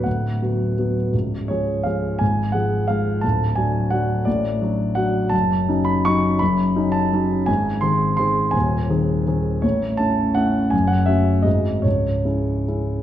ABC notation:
X:1
M:3/4
L:1/8
Q:1/4=167
K:Dlyd
V:1 name="Grand piano"
f4- f z | z2 c2 ^e2 | g2 f2 ^e2 | a2 g2 f2 |
d4 f2 | [K:G#phr] a3 b c'2 | b3 a3 | g2 ^b2 b2 |
g4 z2 | c2 a2 f2 | g f e2 d2 | c6 |]
V:2 name="Grand piano" clef=bass
[D,,,D,,]2 [F,B,F]2 [F,B,F]2 | [C,,,C,,]2 [^E,G,G]2 [E,G,G]2 | [G,,,G,,]2 [^E,G,G]2 [E,G,G]2 | [D,,,D,,]2 [F,DF]2 [F,DF]2 |
[A,,,A,,]2 [F,DF]2 [F,DF]2 | [K:G#phr] [F,,,F,,]2 [F,CD]2 [F,CD]2 | [F,,,F,,]2 [F,CD]2 [F,CD]2 | [G,,,G,,]2 [D,^B,G]2 [D,B,G]2 |
[D,,,D,,]2 [D,^B,G]2 [D,B,G]2 | [A,,,A,,]2 [A,CE]2 [A,CE]2 | [F,,,F,,]2 [A,CF]2 [G,,,G,,G,^B,F]2 | [C,,,C,,]2 [G,CE]2 [G,CE]2 |]